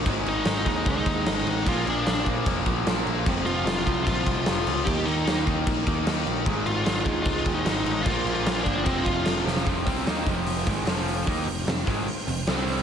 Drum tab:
CC |x-x-x-x-x-x-x-x-|x-x-x-x-x-x-x-x-|x-x-x-x-x-x-x-x-|x-x-x-x-x-x-x-x-|
HH |----------------|----------------|----------------|----------------|
SD |----o-------o---|----o-------o---|----o-------o---|----o-------o---|
BD |o-----o-o-o-----|o-----o-o-o-----|o-----o-o-o-----|o-----o-o-o-----|

CC |x-x-x-x-x-x-x-x-|x-x-x-x-x-x-x---|----------------|----------------|
HH |----------------|----------------|o-o-o-o-o-o-o-o-|o-o-o-o-o-o-o-o-|
SD |----o-------o---|----o-------o-oo|----o-------o---|----o-------o---|
BD |o-----o-o-o-----|o-----o-o-o-----|o-o---o---o-----|o-----o---------|